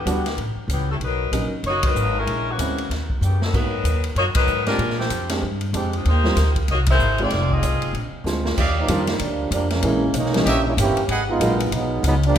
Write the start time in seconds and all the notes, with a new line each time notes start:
Already playing: E3 D4 G4
0.00 B3
0.06 D2 G3 B3 D4 F#4, hi-hat pedal, ride
0.26 snare, ride
0.37 A1, ride
0.56 muted upright bass stroke
0.68 C#2, hi-hat pedal, ride
0.72 E3 B3 C#4 G4
0.91 G3 C#4 E4 A4
1.00 B1, ride
1.04 F#3 D#4 A#4 B4
1.32 A#1 F#3 A#3 C#4 D#4, hi-hat pedal, ride
1.52 muted upright bass stroke
1.63 F#1 A#3 D#4 C#5, ride
1.67 F#4
1.83 F#3 D#4 A#4 B4, kick, ride
1.95 G#1, hi-hat pedal
2.18 G#3 C#4 E4 A#4
2.27 A#1, ride
2.50 E3 A#3 C#4 F#4
2.58 D2 G#3 C4 C#4 E4, hi-hat pedal, ride
2.78 ride
2.90 D#2, snare, ride
3.10 kick
3.21 F#2 C#3 F#3 B3 G4, hi-hat pedal
3.42 F#3 B3 D#4 A4, snare
3.53 G#2 F#3 A#3 B3 D#4 F#4 A#4 B4, kick, crash
3.84 D#2, hi-hat pedal, ride
4.04 ride
4.15 F#2 A#3 D#4 F#4 C#5, ride
4.35 F#3 D#4 A#4 B4, muted upright bass stroke, kick, ride
4.47 G#2, hi-hat pedal
4.66 G#3 C4 D4 F4 G4 A#4, snare, ride
4.79 A#2, ride
4.90 snare
4.99 F3 C4 D4 G4, snare
5.10 F2, hi-hat pedal, ride
5.29 G#3 C4 D4 G4, snare, ride
5.43 G2
5.61 ride
5.73 F2 F3 G#3 C4 D4 G4, hi-hat pedal, ride
5.93 F3 C4 D4 G#4, ride
6.05 D#2 A#3 D#4 G4 C5, ride
6.24 G3 A#3 C4 F4, snare
6.36 D2, snare, hi-hat pedal, ride
6.56 kick, ride
6.68 C2 A#3 D#4 F#4 C#5, ride
6.86 kick, ride
6.91 A#3 E4 G#4 C5
6.99 G#1, hi-hat pedal
7.18 G#3 C4 D#4 F4 G#4, ride
7.22 D5
7.30 F1, snare, ride
7.50 C4 F4 G#4 D#5, kick
7.63 C2, hi-hat pedal, ride
7.73 G#1
7.82 F1, ride
7.93 A#1, ride
8.12 muted upright bass stroke
8.24 D2 G#3 C4 D4 F4, snare, hi-hat pedal
8.45 snare
8.57 D#2 G4 D5 D#5 F5, kick, crash
8.78 F3 G3 A#3 D#4
8.88 F2 D#3 G3 A#3 D4 F4, hi-hat pedal, ride
9.07 snare, ride
9.19 D2 F3 G3 A#3 D4, ride
9.51 F2 F3 G3 A#3 D4, hi-hat pedal, ride
9.70 E3 G#3 A#3 C#4, snare, ride
9.82 A#1 E3 G#3 A#3 C#4 E4, ride
10.14 B1 G#3 A#3 C#4 D#4, hi-hat pedal, ride
10.26 snare
10.33 E3 G3 A#3 C#4 D#4, snare, ride
10.46 A#1 E3 G3 A#3 C#4 G4 C#5 D#5 E5, ride
10.67 G3 A#3 C#4 E4
10.77 G1 E3 A#3 C#4 G4, hi-hat pedal, ride
10.96 muted upright bass stroke, ride
11.08 G#1 G#4 B4 D#5 F#5, ride
11.30 G#3 B3 D#4 F4
11.40 A#1 F#3 G#3 A#3 B3 D#4, hi-hat pedal, ride
11.60 ride
11.72 B1 F#3 G#3 B3 D#4, ride
12.03 C#2, hi-hat pedal, ride
12.07 F#3 G#3 B3 D#4
12.23 F3 G3 A#3 D4, ride